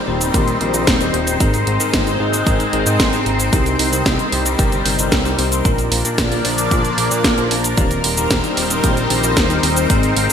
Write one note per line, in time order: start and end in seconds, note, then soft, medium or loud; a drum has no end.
0.00 1.38 G3 medium
0.00 1.38 C4 medium
0.00 5.61 D#4 medium
0.00 3.49 A#4 medium
0.00 5.61 C5 medium
0.08 0.31 D#1 medium
0.08 0.31 D#3 medium
0.08 0.31 C4 medium
0.08 0.31 D#4 medium
0.08 0.31 G4 medium
0.08 0.31 C5 medium
0.21 closed hi-hat soft
0.21 cabasa medium
0.34 0.58 A#1 medium
0.34 0.52 D#3 medium
0.34 0.52 C4 medium
0.34 0.52 D#4 medium
0.34 0.52 G4 medium
0.34 0.52 A#4 medium
0.34 kick loud
0.34 closed hi-hat medium
0.34 cabasa soft
0.48 closed hi-hat soft
0.48 cabasa soft
0.61 0.73 A#1 medium
0.61 0.97 D#3 medium
0.61 0.97 C4 medium
0.61 0.97 D#4 medium
0.61 0.97 G4 medium
0.61 0.97 A#4 medium
0.61 closed hi-hat medium
0.74 0.86 A#1 loud
0.74 closed hi-hat soft
0.74 cabasa medium
0.87 1.11 D#1 medium
0.87 kick loud
0.87 snare loud
0.87 closed hi-hat medium
0.87 cabasa soft
1.01 1.37 D#3 medium
1.01 1.37 C4 medium
1.01 1.37 D#4 medium
1.01 1.37 G4 medium
1.01 1.37 C5 loud
1.01 closed hi-hat soft
1.01 cabasa soft
1.14 1.38 D#1 loud
1.14 closed hi-hat medium
1.27 closed hi-hat soft
1.27 cabasa medium
1.40 1.64 G#1 medium
1.40 1.77 G#2 medium
1.40 3.51 G#3 medium
1.40 1.77 C4 medium
1.40 5.61 C4 medium
1.40 1.77 D#4 medium
1.40 1.77 G#4 medium
1.40 1.77 A#4 medium
1.40 kick loud
1.40 closed hi-hat medium
1.40 cabasa soft
1.54 closed hi-hat soft
1.54 cabasa soft
1.67 1.79 G#1 loud
1.67 closed hi-hat medium
1.80 2.09 G#2 medium
1.80 2.09 C4 medium
1.80 2.09 D#4 medium
1.80 2.09 G#4 medium
1.80 2.09 A#4 medium
1.80 closed hi-hat soft
1.80 cabasa medium
1.93 2.17 G#1 loud
1.93 kick loud
1.93 snare loud
1.93 closed hi-hat medium
1.93 cabasa soft
2.07 closed hi-hat soft
2.07 cabasa soft
2.20 2.44 G#1 loud
2.20 2.43 G#2 medium
2.20 2.43 C4 medium
2.20 2.43 D#4 medium
2.20 2.43 G#4 medium
2.20 2.43 C5 medium
2.33 closed hi-hat soft
2.33 cabasa medium
2.47 2.58 G#1 loud
2.47 2.65 G#2 medium
2.47 2.65 C4 medium
2.47 2.64 D#4 medium
2.47 2.64 G#4 medium
2.47 2.64 A#4 medium
2.47 kick loud
2.47 closed hi-hat medium
2.47 cabasa medium
2.60 closed hi-hat soft
2.60 cabasa soft
2.73 2.85 G#1 medium
2.73 3.10 G#2 medium
2.73 3.10 C4 medium
2.73 3.10 D#4 medium
2.73 3.10 G#4 medium
2.73 3.10 A#4 medium
2.73 closed hi-hat medium
2.86 2.98 G#2 loud
2.86 closed hi-hat soft
2.86 cabasa medium
3.00 3.12 G#1 medium
3.00 kick loud
3.00 snare loud
3.00 closed hi-hat medium
3.00 cabasa medium
3.13 3.50 G#2 medium
3.13 3.50 C4 medium
3.13 3.50 D#4 medium
3.13 3.50 G#4 medium
3.13 3.50 C5 loud
3.13 closed hi-hat soft
3.13 cabasa soft
3.26 3.50 G#1 medium
3.26 closed hi-hat medium
3.40 closed hi-hat soft
3.40 cabasa medium
3.53 3.77 C2 loud
3.53 3.89 C3 medium
3.53 5.63 G3 medium
3.53 3.89 C4 medium
3.53 3.89 D#4 medium
3.53 3.90 G4 medium
3.53 10.33 A#4 medium
3.53 3.89 A#4 medium
3.53 kick loud
3.53 closed hi-hat medium
3.53 cabasa medium
3.66 closed hi-hat soft
3.66 cabasa soft
3.79 4.03 C2 medium
3.79 open hi-hat loud
3.93 4.21 C3 medium
3.93 4.21 C4 medium
3.93 4.21 D#4 medium
3.93 4.21 G4 medium
3.93 4.21 A#4 medium
3.93 closed hi-hat soft
3.93 cabasa medium
4.06 4.18 C2 loud
4.06 kick loud
4.06 snare loud
4.06 closed hi-hat medium
4.06 cabasa medium
4.19 closed hi-hat soft
4.19 cabasa soft
4.32 4.56 C2 medium
4.32 4.56 C3 medium
4.32 4.56 C4 medium
4.32 4.56 D#4 medium
4.32 4.56 G4 medium
4.32 4.56 C5 medium
4.32 open hi-hat loud
4.46 closed hi-hat soft
4.46 cabasa medium
4.59 4.83 G1 medium
4.59 4.77 C3 medium
4.59 4.77 C4 medium
4.59 4.77 D#4 medium
4.59 4.77 G4 medium
4.59 4.77 A#4 medium
4.59 kick loud
4.59 closed hi-hat medium
4.59 cabasa medium
4.72 closed hi-hat soft
4.72 cabasa soft
4.85 4.97 G1 medium
4.85 5.22 C3 medium
4.85 5.22 C4 medium
4.85 5.22 D#4 medium
4.85 5.22 G4 medium
4.85 5.22 A#4 medium
4.85 open hi-hat loud
4.99 5.11 G1 loud
4.99 closed hi-hat soft
4.99 cabasa medium
5.12 5.36 C2 medium
5.12 kick loud
5.12 snare loud
5.12 closed hi-hat medium
5.12 cabasa soft
5.25 5.62 C3 medium
5.25 5.62 C4 medium
5.25 5.62 D#4 medium
5.25 5.62 G4 medium
5.25 5.62 C5 loud
5.25 closed hi-hat soft
5.25 cabasa soft
5.39 5.62 C2 loud
5.39 open hi-hat loud
5.52 closed hi-hat soft
5.52 cabasa medium
5.65 5.89 A#1 medium
5.65 6.02 A#2 medium
5.65 7.75 F3 medium
5.65 6.02 A#3 medium
5.65 7.75 A#3 medium
5.65 6.02 D4 medium
5.65 7.76 D4 medium
5.65 6.02 F4 medium
5.65 6.02 A#4 medium
5.65 7.75 D5 medium
5.65 kick loud
5.65 closed hi-hat medium
5.65 cabasa medium
5.78 closed hi-hat soft
5.78 cabasa soft
5.92 6.04 A#1 loud
5.92 open hi-hat loud
6.05 6.33 A#2 medium
6.05 6.33 A#3 medium
6.05 6.33 D4 medium
6.05 6.33 F4 medium
6.05 6.33 A#4 medium
6.05 closed hi-hat soft
6.05 cabasa medium
6.18 6.42 A#1 loud
6.18 kick loud
6.18 snare loud
6.18 closed hi-hat medium
6.18 cabasa medium
6.32 open hi-hat medium
6.32 cabasa soft
6.45 6.68 A#1 loud
6.45 6.68 A#2 medium
6.45 6.68 A#3 medium
6.45 6.68 D4 medium
6.45 6.68 F4 medium
6.45 6.68 C5 medium
6.45 open hi-hat loud
6.58 closed hi-hat soft
6.58 cabasa medium
6.71 6.83 A#1 loud
6.71 6.89 A#2 medium
6.71 6.89 A#3 medium
6.71 6.89 D4 medium
6.71 6.89 F4 medium
6.71 6.89 A#4 loud
6.71 kick loud
6.71 closed hi-hat medium
6.71 cabasa medium
6.85 closed hi-hat soft
6.85 cabasa soft
6.98 7.10 A#1 medium
6.98 7.35 A#2 medium
6.98 7.35 A#3 medium
6.98 7.35 D4 medium
6.98 7.35 F4 medium
6.98 7.35 A#4 medium
6.98 open hi-hat loud
7.11 7.23 A#2 loud
7.11 closed hi-hat soft
7.11 cabasa medium
7.24 7.48 A#1 loud
7.24 kick loud
7.24 snare loud
7.24 closed hi-hat medium
7.24 cabasa medium
7.38 7.74 A#2 medium
7.38 7.74 A#3 medium
7.38 7.74 D4 medium
7.38 7.74 F4 medium
7.38 7.74 C5 loud
7.38 closed hi-hat soft
7.38 cabasa soft
7.51 7.75 A#1 medium
7.51 open hi-hat loud
7.64 closed hi-hat soft
7.64 cabasa medium
7.77 8.01 D#1 loud
7.77 8.14 D#3 medium
7.77 9.88 G3 medium
7.77 10.33 C4 medium
7.77 8.14 C4 medium
7.77 10.33 D#4 medium
7.77 8.14 D#4 medium
7.77 8.14 G4 medium
7.77 8.14 A#4 medium
7.77 10.33 C5 medium
7.77 kick loud
7.77 closed hi-hat loud
7.77 cabasa medium
7.91 closed hi-hat soft
7.91 cabasa soft
8.04 8.28 D#1 medium
8.04 open hi-hat loud
8.17 8.46 D#3 medium
8.17 8.46 C4 medium
8.17 8.46 D#4 medium
8.17 8.46 G4 medium
8.17 8.46 A#4 medium
8.17 closed hi-hat soft
8.17 cabasa medium
8.31 8.42 D#1 loud
8.31 kick loud
8.31 snare loud
8.31 closed hi-hat medium
8.31 cabasa soft
8.44 closed hi-hat soft
8.44 cabasa soft
8.57 8.81 D#1 medium
8.57 8.81 D#3 medium
8.57 8.81 C4 medium
8.57 8.81 D#4 medium
8.57 8.81 G4 medium
8.57 8.81 C5 medium
8.57 open hi-hat loud
8.70 closed hi-hat soft
8.70 cabasa medium
8.84 9.07 A#1 medium
8.84 9.02 D#3 medium
8.84 9.02 C4 medium
8.84 9.02 D#4 medium
8.84 9.02 G4 medium
8.84 9.02 A#4 loud
8.84 kick loud
8.84 closed hi-hat loud
8.84 cabasa medium
8.97 closed hi-hat soft
8.97 cabasa soft
9.10 9.22 A#1 medium
9.10 9.47 D#3 medium
9.10 9.47 C4 medium
9.10 9.47 D#4 medium
9.10 9.47 G4 medium
9.10 9.47 A#4 medium
9.10 open hi-hat loud
9.23 9.35 A#1 loud
9.23 closed hi-hat soft
9.23 cabasa medium
9.37 9.61 D#1 medium
9.37 kick loud
9.37 snare loud
9.37 closed hi-hat medium
9.37 cabasa medium
9.50 9.87 D#3 medium
9.50 9.87 C4 medium
9.50 9.87 D#4 medium
9.50 9.87 G4 medium
9.50 9.87 C5 loud
9.50 closed hi-hat soft
9.50 cabasa soft
9.63 9.87 D#1 loud
9.63 open hi-hat loud
9.77 closed hi-hat soft
9.77 cabasa medium
9.90 10.14 G#1 medium
9.90 10.27 G#2 medium
9.90 10.33 G#3 medium
9.90 10.27 C4 medium
9.90 10.27 D#4 medium
9.90 10.27 G#4 medium
9.90 10.27 A#4 medium
9.90 kick loud
9.90 closed hi-hat loud
9.90 cabasa soft
10.03 closed hi-hat soft
10.03 cabasa soft
10.17 10.28 G#1 loud
10.17 open hi-hat loud
10.30 closed hi-hat soft
10.30 cabasa medium